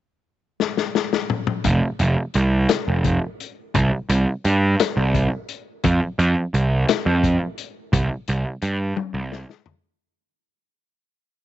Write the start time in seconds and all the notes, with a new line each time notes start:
0.60 snare
0.77 snare
0.95 snare
1.13 snare
1.30 mid tom
1.47 mid tom
1.64 F1, kick, closed hi-hat
1.99 F1, closed hi-hat
2.34 C2, closed hi-hat
2.69 snare, closed hi-hat
2.88 F1
3.04 kick, closed hi-hat
3.40 closed hi-hat
3.75 C2, kick, closed hi-hat
4.09 C2, closed hi-hat
4.45 G2, closed hi-hat
4.80 snare, closed hi-hat
4.97 C2
5.14 kick, closed hi-hat
5.49 closed hi-hat
5.84 F2, kick, closed hi-hat
6.19 F2, closed hi-hat
6.54 C2, closed hi-hat
6.89 snare, closed hi-hat
7.06 F2
7.24 kick, closed hi-hat
7.58 closed hi-hat
7.93 C2, kick, closed hi-hat
8.28 C2, closed hi-hat
8.62 G2, closed hi-hat
8.97 high tom
9.14 C2
9.32 snare
9.50 snare
9.66 floor tom